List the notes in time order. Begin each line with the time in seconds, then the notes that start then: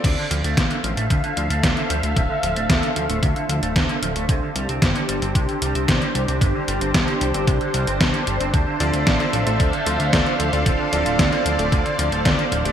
Already playing: C4 F4 A4 D5
0.04 D2 C3 D4 A4 C5 E5 F5, kick, closed hi-hat, crash
0.18 D3
0.31 D2 F3, closed hi-hat
0.44 D2 A3, closed hi-hat
0.57 A1 C3, kick, snare, closed hi-hat
0.71 D3, closed hi-hat
0.84 A1 F3, closed hi-hat
0.97 A1 A3, closed hi-hat
1.10 D2 C3, kick, closed hi-hat
1.24 D3, closed hi-hat
1.37 D2 F3, closed hi-hat
1.50 D2 A3, closed hi-hat
1.63 D2 C3, kick, snare, closed hi-hat
1.77 D3, closed hi-hat
1.90 D2 F3, closed hi-hat
2.03 D2 A3, closed hi-hat
2.16 D1 C3, kick, closed hi-hat
2.30 D3
2.43 D1 F3, closed hi-hat
2.56 D1 A3, closed hi-hat
2.70 D2 C3, kick, snare, closed hi-hat
2.83 D3, closed hi-hat
2.96 D2 F3, closed hi-hat
3.09 D1 A3, closed hi-hat
3.23 D2 C3, kick, closed hi-hat
3.36 D3, closed hi-hat
3.49 D2 F3, closed hi-hat
3.62 D1 A3, closed hi-hat
3.76 D2 C3, kick, snare, closed hi-hat
3.89 D3, closed hi-hat
4.02 D1 F3, closed hi-hat
4.16 D1 A3, closed hi-hat
4.29 C2 C3 G4, kick, closed hi-hat
4.42 D3
4.55 C2 G3, closed hi-hat
4.69 C2 C4, closed hi-hat
4.82 G1 C3, kick, snare, closed hi-hat
4.96 D3, closed hi-hat
5.09 G1 G3, closed hi-hat
5.22 G1 C4, closed hi-hat
5.35 C2 C3, kick, closed hi-hat
5.49 D3, closed hi-hat
5.62 C2 G3, closed hi-hat
5.75 C2 C4, closed hi-hat
5.88 C2 C3, kick, snare, closed hi-hat
6.02 D3, closed hi-hat
6.15 C2 G3, closed hi-hat
6.28 C2 C4, closed hi-hat
6.41 G1 C3, kick, closed hi-hat
6.55 D3
6.68 G1 G3, closed hi-hat
6.81 G1 C4, closed hi-hat
6.94 C2 C3, kick, snare, closed hi-hat
7.08 D3, closed hi-hat
7.21 C2 G3, closed hi-hat
7.34 G1 C4, closed hi-hat
7.47 C2 C3, kick, closed hi-hat
7.61 D3, closed hi-hat
7.74 C2 G3, closed hi-hat
7.87 G1 C4, closed hi-hat
8.01 C2 C3, kick, snare, closed hi-hat
8.14 D3, closed hi-hat
8.27 G1 G3, closed hi-hat
8.40 G1 C4, closed hi-hat
8.54 D2 C3 A4 E5 F5, kick, closed hi-hat
8.67 D3
8.80 D2 F3 C4 F4 A4 D5, closed hi-hat
8.94 D2 A3, closed hi-hat
9.07 A1 C3, kick, snare, closed hi-hat
9.20 D3 C4 F4 A4 D5, closed hi-hat
9.33 A1 F3, closed hi-hat
9.47 A1 A3 C4 F4 A4 D5, closed hi-hat
9.60 D2 C3, kick, closed hi-hat
9.73 D3, closed hi-hat
9.86 D2 F3 C4 F4 A4 D5, closed hi-hat
10.00 D2 A3, closed hi-hat
10.13 D2 C3 C4 F4 A4 D5, kick, snare, closed hi-hat
10.26 D3, closed hi-hat
10.40 D2 F3, closed hi-hat
10.53 D2 A3 C4 F4 A4 D5, closed hi-hat
10.66 D1 C3 D5, kick, closed hi-hat
10.79 D3
10.93 D1 F3 C4 F4 A4 D5, closed hi-hat
11.06 D1 A3, closed hi-hat
11.19 D2 C3, kick, snare, closed hi-hat
11.32 D3 C4 F4 A4 D5, closed hi-hat
11.46 D2 F3, closed hi-hat
11.59 D1 A3 C4 F4 A4 D5, closed hi-hat
11.72 D2 C3, kick, closed hi-hat
11.85 D3, closed hi-hat
11.99 D2 F3 C4 F4 A4 D5, closed hi-hat
12.12 D1 A3, closed hi-hat
12.25 D2 C3 C4 F4 A4 D5, kick, snare, closed hi-hat
12.38 D3, closed hi-hat
12.52 D1 F3, closed hi-hat
12.65 D1 A3 C4 D4 G4 D5, closed hi-hat